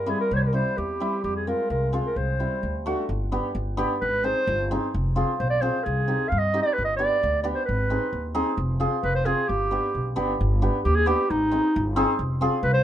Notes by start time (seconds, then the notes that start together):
Already playing: G2 A#4
0.06 G3 C4 E4 G#4
0.20 A#4
0.31 C2 C5
0.36 C5 C#5
0.43 A#4
0.53 G3 C4 E4 C5
0.78 E2 G4
1.00 G3 C4 E4
1.24 F2 G4
1.36 G#4
1.47 G#3 C4 F4 A#4
1.70 C2 A#4
1.92 G#3 C4 F4
2.06 A#4
2.16 C2 C5
2.40 G3 C4 E4
2.63 D2
2.86 A3 D4 F#4
3.09 G1
3.32 B3 D4 G4
3.55 G1
3.77 B3 D4 G4
4.01 G#1 B4
4.24 C4 D#4 G#4 C5
4.47 G1
4.71 C4 D#4 G#4
4.94 F1
5.16 C4 F4 G#4
5.40 B1 C5
5.50 D5
5.62 C4 F4 G#4 C5
5.84 C2 G#4
6.08 C4 D#4 G4
6.28 G2 F5
6.38 D#5
6.54 C4 D#4 G4
6.62 D5
6.73 B4
6.78 G1
6.85 D#5
6.96 B3 D4 G4 D5
7.23 D2
7.43 B3 D4 G4 D5
7.55 C5
7.65 G#1 B4
7.90 C4 D#4 G#4
8.13 D#2
8.35 C4 D#4 G#4
8.57 F1
8.80 C4 F4 G#4
9.03 F1 B4
9.16 C5
9.25 C4 F4 G#4
9.48 G1 G4
9.71 B3 D4 G4
9.95 B1
10.16 G1 B3 D4 G4
10.41 G1
10.62 B3 D4 G4
10.85 D#2 G4
10.95 G#4
11.06 B3 D4 G4
11.30 G#1 D#4
11.51 C4 D#4 G#4
11.76 G1
11.96 C4 D#4 G#4
12.19 F1
12.41 C4 F4 G#4
12.63 C2 B4
12.73 C5